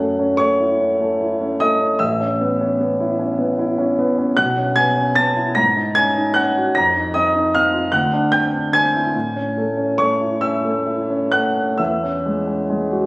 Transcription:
0.00 1.95 F#2 soft
0.00 0.31 A3 soft
0.00 0.12 C#4 soft
0.00 0.36 F#5 medium
0.00 0.39 F#6 medium
0.19 0.51 C#4 soft
0.37 0.71 A3 soft
0.37 1.55 C#5 medium
0.37 1.58 C#6 medium
0.60 0.92 E4 soft
0.80 1.12 C#4 soft
1.01 1.32 A3 soft
1.21 1.52 E4 soft
1.41 1.72 C#4 soft
1.60 1.92 A3 soft
1.60 1.97 D#5 medium
1.60 2.00 D#6 medium
1.81 2.00 C#4 soft
1.99 4.33 A1 soft
1.99 3.54 E5 medium
1.99 3.58 E6 medium
2.20 2.52 C#4 soft
2.41 2.72 B3 soft
2.61 2.92 C#4 soft
2.80 3.12 B3 soft
3.00 3.31 E4 soft
3.19 3.51 C#4 soft
3.38 3.70 B3 soft
3.59 3.90 E4 soft
3.78 4.10 C#4 soft
3.99 4.29 B3 soft
4.18 4.37 C#4 soft
4.37 5.52 B1 soft
4.37 4.73 F#5 medium
4.37 4.75 F#6 medium
4.58 4.88 C#4 soft
4.76 5.08 B3 soft
4.76 5.13 G#5 medium
4.76 5.15 G#6 medium
4.96 5.28 C#4 soft
5.15 5.48 B3 soft
5.15 5.53 A5 medium
5.15 5.55 A6 loud
5.36 5.55 E4 soft
5.55 6.71 G#2 soft
5.55 5.93 A#5 medium
5.55 5.95 A#6 medium
5.76 6.07 D#4 soft
5.95 6.27 C#4 soft
5.95 6.32 G#5 medium
5.95 6.34 G#6 loud
6.17 6.48 D#4 soft
6.34 6.67 C#4 soft
6.34 6.72 F#5 medium
6.34 6.74 F#6 medium
6.57 6.76 F#4 soft
6.75 7.90 F2 soft
6.75 7.13 A#5 medium
6.75 7.14 A#6 medium
6.96 7.27 D#4 soft
7.14 7.47 C4 soft
7.14 7.51 D#5 medium
7.14 7.54 D#6 medium
7.35 7.66 D#4 soft
7.54 7.86 C4 soft
7.54 7.91 F5 medium
7.54 7.93 F6 medium
7.73 7.93 F4 soft
7.92 9.10 D2 medium
7.92 8.30 F#5 medium
7.92 8.32 F#6 medium
8.13 8.45 D4 soft
8.32 8.65 C4 soft
8.32 8.70 G5 medium
8.32 8.73 G6 medium
8.54 8.86 D4 soft
8.73 9.06 C4 soft
8.73 9.95 G#5 medium
8.73 9.99 G#6 loud
8.95 9.15 E4 soft
9.15 11.75 A2 soft
9.36 9.69 C#4 soft
9.57 9.91 A3 soft
9.77 10.12 C#4 soft
9.98 10.34 A3 soft
9.98 10.40 C#5 medium
9.98 10.42 C#6 medium
10.21 10.56 E4 soft
10.41 10.78 C#4 soft
10.41 11.28 E5 soft
10.41 11.31 E6 medium
10.64 11.00 A3 soft
10.86 11.22 E4 soft
11.10 11.46 C#4 soft
11.32 11.70 A3 soft
11.32 11.76 F#5 medium
11.32 11.79 F#6 medium
11.57 11.80 C#4 soft
11.78 13.06 E2 soft
11.78 13.06 E5 soft
11.78 13.06 E6 medium
12.03 12.40 C#4 soft
12.26 12.63 G#3 soft
12.47 12.84 C#4 soft
12.69 13.06 G#3 soft
12.92 13.06 F#4 soft

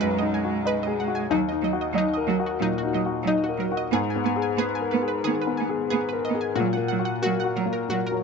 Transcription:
0.00 1.33 B1 medium
0.00 0.36 F#2 medium
0.00 1.26 G#3 medium
0.00 0.22 D#4 medium
0.00 0.44 F#4 medium
0.00 0.87 G#4 medium
0.00 0.11 B4 loud
0.00 0.65 D#5 medium
0.18 0.57 D#4 medium
0.18 0.28 D#5 medium
0.34 0.44 G#5 medium
0.44 0.79 F#4 medium
0.65 0.76 B4 loud
0.65 1.00 D#5 medium
0.83 1.22 G#4 medium
0.83 0.93 D#5 medium
1.00 1.09 F#5 medium
1.08 1.30 F#4 medium
1.15 1.25 G#5 medium
1.30 2.57 D#2 medium
1.30 1.39 F#3 medium
1.30 1.41 D#4 medium
1.49 1.87 D#4 medium
1.49 1.58 D#5 medium
1.62 1.70 F#3 medium
1.62 1.74 D#5 medium
1.73 2.09 F#4 medium
1.81 1.91 D#5 medium
1.93 2.01 F#3 medium
1.93 2.31 D#5 medium
1.98 2.07 D#4 loud
2.14 2.52 A#4 medium
2.14 2.23 D#5 medium
2.27 2.35 F#3 medium
2.27 2.39 F#4 medium
2.39 2.74 F#4 medium
2.46 2.56 F#4 medium
2.59 2.96 A#2 medium
2.59 2.67 F#3 medium
2.59 2.72 D#4 loud
2.78 2.88 F#4 medium
2.83 3.18 D#4 medium
2.93 3.01 F#3 medium
2.93 3.04 D#5 medium
3.06 3.41 F#4 medium
3.23 3.31 F#3 medium
3.27 3.37 D#4 loud
3.27 3.62 D#5 medium
3.44 3.53 F#4 medium
3.49 3.84 A#4 medium
3.57 3.65 F#3 medium
3.57 3.70 A#4 medium
3.72 3.93 F#4 medium
3.77 3.87 D#5 medium
3.91 5.21 G#2 medium
3.91 3.99 B3 medium
3.91 4.03 G#4 loud
4.10 4.20 G#5 medium
4.16 4.50 B3 medium
4.24 4.32 B3 medium
4.24 4.36 G#5 medium
4.36 4.72 G#4 medium
4.42 4.52 G#5 medium
4.57 4.65 B3 medium
4.57 4.68 G#4 loud
4.57 4.94 B4 medium
4.75 4.85 G#5 medium
4.81 5.16 A#4 medium
4.91 5.01 B3 medium
4.91 5.01 B4 medium
5.03 5.38 G#4 medium
5.08 5.18 B4 medium
5.24 5.60 D#3 medium
5.24 5.34 B3 medium
5.24 5.34 G#4 loud
5.42 5.51 B4 medium
5.47 5.82 B3 medium
5.57 5.68 B3 medium
5.57 5.67 G#5 medium
5.69 6.05 G#4 medium
5.90 6.00 B3 medium
5.90 6.01 G#4 loud
5.90 6.26 B4 medium
6.09 6.18 B4 medium
6.13 6.48 A#4 medium
6.25 6.34 D#5 medium
6.29 6.37 B3 medium
6.35 6.57 G#4 medium
6.41 6.51 G#5 medium
6.55 7.84 A#2 medium
6.55 6.67 F#3 medium
6.55 6.66 F#4 medium
6.73 7.13 A#3 medium
6.73 6.83 F#5 medium
6.88 6.99 F#3 medium
6.88 6.99 F#5 medium
6.99 7.35 F#4 medium
7.05 7.15 F#5 medium
7.22 7.32 F#3 medium
7.22 7.32 F#4 loud
7.22 7.57 A#4 medium
7.40 7.49 F#5 medium
7.44 7.80 F#4 medium
7.56 7.64 F#3 medium
7.56 7.66 A#4 medium
7.66 8.02 A#3 medium
7.73 7.83 A#4 medium
7.89 8.23 A#2 medium
7.89 7.98 F#3 medium
7.89 8.00 F#4 loud
8.07 8.16 A#4 medium
8.12 8.23 F#3 medium

